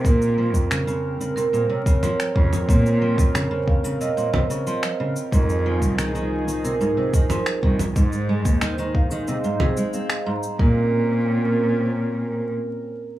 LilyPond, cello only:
\new Staff \with { instrumentName = "Cello" } { \clef bass \time 4/4 \key bes \minor \tempo 4 = 91 bes,8. f,16 r2 r8 f,16 r16 | bes,8. f,16 r2. | f,8. c,16 r2 r8 c,16 r16 | aes,8. ees,16 r2. |
bes,2. r4 | }